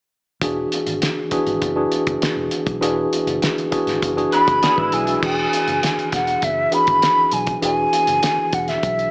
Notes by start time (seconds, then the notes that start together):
0.41 E1 E3 D4 F#4 G#4, kick, closed hi-hat
0.72 closed hi-hat
0.86 G#1, closed hi-hat
1.02 snare, closed hi-hat
1.31 E3 D4 F#4 G#4, muted fingered electric bass stroke, kick, closed hi-hat
1.47 G#1, closed hi-hat
1.62 F#1, kick, closed hi-hat
1.76 E3 D4 F#4 G#4
1.92 closed hi-hat
2.07 F#1, kick, closed hi-hat
2.22 muted fingered electric bass stroke, snare, closed hi-hat
2.37 E1
2.51 closed hi-hat
2.66 B1, kick, closed hi-hat
2.81 E1 E3 D4 F#4 G#4, closed hi-hat
3.13 closed hi-hat
3.27 F#1, closed hi-hat
3.42 snare, closed hi-hat
3.58 closed hi-hat
3.71 E3 D4 F#4 G#4, muted fingered electric bass stroke, kick, closed hi-hat
3.87 G#1, snare, closed hi-hat
4.02 F#1, kick, closed hi-hat
4.16 E3 D4 F#4 G#4, closed hi-hat
4.32 D4 B4 B5, closed hi-hat
4.47 F#1, kick, closed hi-hat
4.63 B3 G#4 B4 D5, snare, closed hi-hat
4.77 G#1 G#3 E4 G#4 B4, kick
4.92 B1 E4 G#4 G#5, closed hi-hat
5.07 D4 F#4, closed hi-hat
5.22 E1 E3 D4 F#4 G#4 G#5, kick, crash
5.53 closed hi-hat
5.68 F#1, closed hi-hat
5.83 snare, closed hi-hat
5.98 muted fingered electric bass stroke, closed hi-hat
6.12 E1 F#5, kick, snare, closed hi-hat
6.27 closed hi-hat
6.42 F#1 E5, kick, closed hi-hat
6.71 E3 D4 F#4 G#4 B5, closed hi-hat
6.87 G#1, kick, closed hi-hat
7.02 snare, closed hi-hat
7.31 B1 G#5, closed hi-hat
7.47 kick, closed hi-hat
7.62 E1 E3 D4 F#4 G#4 G#5, closed hi-hat
7.93 closed hi-hat
8.07 F#1, closed hi-hat
8.23 snare, closed hi-hat
8.38 muted fingered electric bass stroke
8.53 E1 F#5, kick, closed hi-hat
8.68 E5, snare, closed hi-hat
8.83 B1, kick, closed hi-hat
8.99 closed hi-hat